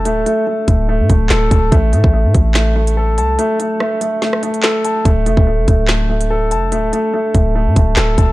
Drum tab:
HH |x-x---x---x-x-x-|x-x---x-x--x--x-|x-x---x---xxx-x-|x-x---x-x--x--x-|
CP |------------x---|--------x-------|------------x---|--------x-------|
SD |------------o---|--------o-------|----r---or--o---|--------o-------|
BD |------o---o---o-|o--o--o---------|----------------|o--o--o---------|

HH |x-x---x---x-x-x-|
CP |------------x---|
SD |------------o---|
BD |------o---o---o-|